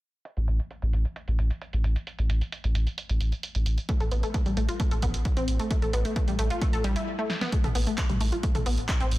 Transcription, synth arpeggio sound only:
3.89 3.96 A3 medium
4.00 4.07 A4 medium
4.12 4.16 B3 medium
4.23 4.33 A3 medium
4.34 4.38 A3 medium
4.46 4.50 G3 medium
4.57 4.64 A3 medium
4.69 4.75 F4 medium
4.80 4.86 A3 medium
4.91 4.98 A4 medium
5.02 5.06 B3 medium
5.37 5.43 C4 loud
5.60 5.69 A3 medium
5.71 5.77 A3 medium
5.82 5.89 A4 medium
5.93 5.97 B3 medium
6.05 6.15 A3 medium
6.16 6.20 A3 medium
6.28 6.32 G3 medium
6.39 6.46 A3 medium
6.50 6.57 F4 medium
6.62 6.68 A3 medium
6.73 6.80 A4 medium
6.84 6.94 G3 loud
6.96 7.06 E4 medium
7.19 7.28 A3 medium
7.41 7.48 B3 loud
7.52 7.59 A3 medium
7.64 7.71 A4 medium
7.75 7.79 B3 medium
7.87 7.96 A3 medium
7.98 8.02 A3 medium
8.10 8.13 G3 medium
8.21 8.27 A3 medium
8.32 8.39 F4 medium
8.43 8.50 A3 medium
8.55 8.61 A4 medium
8.66 8.70 B3 medium
9.00 9.07 C4 loud

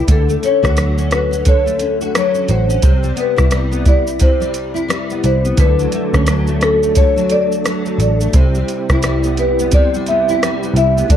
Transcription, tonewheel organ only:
5.56 8.29 F#3 medium
5.56 8.29 A3 medium
5.56 8.30 D4 medium
5.61 8.31 A4 medium
8.32 11.04 G3 medium
8.32 11.05 C4 medium
8.32 11.06 E4 medium
8.36 11.07 G4 medium
11.06 11.17 A3 medium
11.06 11.17 D4 medium
11.06 11.17 F#4 medium
11.11 11.17 A4 medium

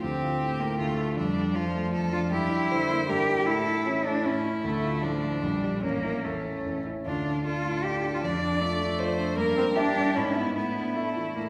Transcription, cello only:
0.02 0.61 C4 medium
0.60 0.78 A#3 medium
0.79 1.18 A3 medium
1.17 1.56 G3 medium
1.55 2.12 F3 medium
2.12 2.20 F4 medium
2.32 3.07 E4 medium
3.09 3.48 G4 medium
3.47 4.07 E4 medium
4.05 4.26 D4 medium
4.25 4.45 C#4 medium
4.65 5.05 A3 medium
5.03 5.45 F3 medium
5.43 5.84 G3 medium
5.83 6.26 A#3 medium
6.24 6.86 A3 medium
7.06 7.42 D4 medium
7.45 7.86 F4 medium
7.84 8.13 G4 medium
8.14 8.18 F4 medium
8.24 8.63 D4 medium
8.61 9.39 A3 medium
9.37 9.56 A#3 medium
9.57 9.65 C4 medium
9.75 10.16 D4 medium
10.15 10.37 C#4 medium
10.35 10.54 B3 medium
10.55 10.97 B3 medium
10.96 11.35 A3 medium
11.35 11.43 A#3 medium

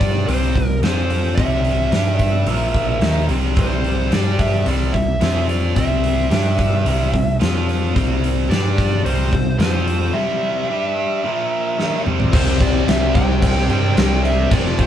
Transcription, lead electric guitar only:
0.00 0.29 D5 medium
0.27 0.78 C5 medium
0.83 1.34 C5 medium
1.35 3.24 E5 loud
3.61 4.15 C5 medium
4.14 4.40 D5 medium
4.40 4.68 E5 loud
4.68 4.93 D5 loud
4.94 5.45 E5 medium
5.50 5.76 D5 medium
5.77 7.37 E5 medium
8.50 9.01 D5 medium
9.05 9.56 C5 medium
9.59 10.16 C5 medium
10.14 12.01 E5 loud
12.35 12.61 C5 medium
12.62 12.86 D5 medium
12.89 13.15 E5 loud
13.15 13.66 G5 loud
13.70 14.24 G5 medium
14.25 14.52 E5 medium
14.52 14.77 D5 loud
14.80 14.87 C5 medium

